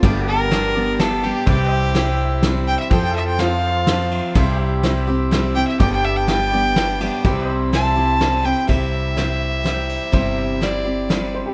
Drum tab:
RD |x-x-xx|x-x-x-|x-x-xx|x-x-x-|
SD |--o-o-|--o-o-|--o-o-|--o-o-|
BD |o-----|o-----|o-----|o-----|

RD |x-x-xx|x-x-x-|x-x-xx|x-x-x-|
SD |--o-o-|--o-o-|--o-o-|--o-o-|
BD |o-----|o-----|o-----|o-----|